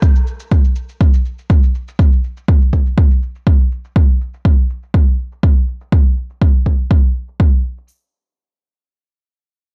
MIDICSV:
0, 0, Header, 1, 2, 480
1, 0, Start_track
1, 0, Tempo, 491803
1, 21, Time_signature, 4, 2, 24, 8
1, 9510, End_track
2, 0, Start_track
2, 0, Title_t, "Drums"
2, 22, Note_on_c, 9, 36, 119
2, 22, Note_on_c, 9, 69, 86
2, 120, Note_off_c, 9, 36, 0
2, 120, Note_off_c, 9, 69, 0
2, 151, Note_on_c, 9, 69, 52
2, 249, Note_off_c, 9, 69, 0
2, 263, Note_on_c, 9, 69, 52
2, 360, Note_off_c, 9, 69, 0
2, 388, Note_on_c, 9, 69, 86
2, 486, Note_off_c, 9, 69, 0
2, 501, Note_on_c, 9, 69, 50
2, 503, Note_on_c, 9, 36, 104
2, 598, Note_off_c, 9, 69, 0
2, 600, Note_off_c, 9, 36, 0
2, 629, Note_on_c, 9, 69, 46
2, 726, Note_off_c, 9, 69, 0
2, 738, Note_on_c, 9, 69, 89
2, 836, Note_off_c, 9, 69, 0
2, 869, Note_on_c, 9, 69, 53
2, 966, Note_off_c, 9, 69, 0
2, 981, Note_on_c, 9, 69, 45
2, 982, Note_on_c, 9, 36, 110
2, 1078, Note_off_c, 9, 69, 0
2, 1080, Note_off_c, 9, 36, 0
2, 1110, Note_on_c, 9, 69, 90
2, 1207, Note_off_c, 9, 69, 0
2, 1222, Note_on_c, 9, 69, 45
2, 1320, Note_off_c, 9, 69, 0
2, 1352, Note_on_c, 9, 69, 45
2, 1449, Note_off_c, 9, 69, 0
2, 1463, Note_on_c, 9, 36, 107
2, 1463, Note_on_c, 9, 69, 83
2, 1560, Note_off_c, 9, 36, 0
2, 1560, Note_off_c, 9, 69, 0
2, 1593, Note_on_c, 9, 69, 51
2, 1690, Note_off_c, 9, 69, 0
2, 1705, Note_on_c, 9, 69, 51
2, 1803, Note_off_c, 9, 69, 0
2, 1834, Note_on_c, 9, 69, 83
2, 1932, Note_off_c, 9, 69, 0
2, 1943, Note_on_c, 9, 36, 110
2, 1944, Note_on_c, 9, 69, 87
2, 2041, Note_off_c, 9, 36, 0
2, 2042, Note_off_c, 9, 69, 0
2, 2072, Note_on_c, 9, 69, 50
2, 2169, Note_off_c, 9, 69, 0
2, 2185, Note_on_c, 9, 69, 46
2, 2283, Note_off_c, 9, 69, 0
2, 2313, Note_on_c, 9, 69, 79
2, 2411, Note_off_c, 9, 69, 0
2, 2423, Note_on_c, 9, 69, 50
2, 2424, Note_on_c, 9, 36, 106
2, 2521, Note_off_c, 9, 69, 0
2, 2522, Note_off_c, 9, 36, 0
2, 2552, Note_on_c, 9, 69, 43
2, 2649, Note_off_c, 9, 69, 0
2, 2663, Note_on_c, 9, 69, 85
2, 2665, Note_on_c, 9, 36, 52
2, 2761, Note_off_c, 9, 69, 0
2, 2762, Note_off_c, 9, 36, 0
2, 2792, Note_on_c, 9, 69, 49
2, 2890, Note_off_c, 9, 69, 0
2, 2905, Note_on_c, 9, 36, 107
2, 3002, Note_off_c, 9, 36, 0
2, 3032, Note_on_c, 9, 69, 81
2, 3130, Note_off_c, 9, 69, 0
2, 3147, Note_on_c, 9, 69, 47
2, 3245, Note_off_c, 9, 69, 0
2, 3272, Note_on_c, 9, 69, 48
2, 3370, Note_off_c, 9, 69, 0
2, 3384, Note_on_c, 9, 36, 104
2, 3385, Note_on_c, 9, 69, 86
2, 3481, Note_off_c, 9, 36, 0
2, 3482, Note_off_c, 9, 69, 0
2, 3515, Note_on_c, 9, 69, 47
2, 3613, Note_off_c, 9, 69, 0
2, 3626, Note_on_c, 9, 69, 47
2, 3724, Note_off_c, 9, 69, 0
2, 3754, Note_on_c, 9, 69, 76
2, 3851, Note_off_c, 9, 69, 0
2, 3864, Note_on_c, 9, 36, 103
2, 3867, Note_on_c, 9, 69, 77
2, 3962, Note_off_c, 9, 36, 0
2, 3965, Note_off_c, 9, 69, 0
2, 3997, Note_on_c, 9, 69, 50
2, 4094, Note_off_c, 9, 69, 0
2, 4107, Note_on_c, 9, 69, 45
2, 4205, Note_off_c, 9, 69, 0
2, 4233, Note_on_c, 9, 69, 78
2, 4331, Note_off_c, 9, 69, 0
2, 4343, Note_on_c, 9, 36, 102
2, 4441, Note_off_c, 9, 36, 0
2, 4472, Note_on_c, 9, 69, 45
2, 4570, Note_off_c, 9, 69, 0
2, 4584, Note_on_c, 9, 69, 78
2, 4682, Note_off_c, 9, 69, 0
2, 4713, Note_on_c, 9, 69, 45
2, 4810, Note_off_c, 9, 69, 0
2, 4823, Note_on_c, 9, 36, 97
2, 4921, Note_off_c, 9, 36, 0
2, 4950, Note_on_c, 9, 69, 79
2, 5047, Note_off_c, 9, 69, 0
2, 5062, Note_on_c, 9, 69, 42
2, 5160, Note_off_c, 9, 69, 0
2, 5192, Note_on_c, 9, 69, 46
2, 5290, Note_off_c, 9, 69, 0
2, 5302, Note_on_c, 9, 36, 103
2, 5400, Note_off_c, 9, 36, 0
2, 5430, Note_on_c, 9, 69, 46
2, 5527, Note_off_c, 9, 69, 0
2, 5541, Note_on_c, 9, 69, 46
2, 5639, Note_off_c, 9, 69, 0
2, 5668, Note_on_c, 9, 69, 77
2, 5766, Note_off_c, 9, 69, 0
2, 5782, Note_on_c, 9, 36, 109
2, 5879, Note_off_c, 9, 36, 0
2, 5908, Note_on_c, 9, 69, 46
2, 6006, Note_off_c, 9, 69, 0
2, 6019, Note_on_c, 9, 69, 49
2, 6116, Note_off_c, 9, 69, 0
2, 6147, Note_on_c, 9, 69, 79
2, 6244, Note_off_c, 9, 69, 0
2, 6261, Note_on_c, 9, 36, 97
2, 6359, Note_off_c, 9, 36, 0
2, 6386, Note_on_c, 9, 69, 44
2, 6484, Note_off_c, 9, 69, 0
2, 6502, Note_on_c, 9, 36, 51
2, 6599, Note_off_c, 9, 36, 0
2, 6625, Note_on_c, 9, 69, 45
2, 6722, Note_off_c, 9, 69, 0
2, 6741, Note_on_c, 9, 36, 106
2, 6839, Note_off_c, 9, 36, 0
2, 6865, Note_on_c, 9, 69, 78
2, 6963, Note_off_c, 9, 69, 0
2, 6978, Note_on_c, 9, 69, 46
2, 7076, Note_off_c, 9, 69, 0
2, 7105, Note_on_c, 9, 69, 44
2, 7203, Note_off_c, 9, 69, 0
2, 7221, Note_on_c, 9, 36, 100
2, 7318, Note_off_c, 9, 36, 0
2, 7461, Note_on_c, 9, 69, 42
2, 7558, Note_off_c, 9, 69, 0
2, 7588, Note_on_c, 9, 69, 77
2, 7686, Note_off_c, 9, 69, 0
2, 9510, End_track
0, 0, End_of_file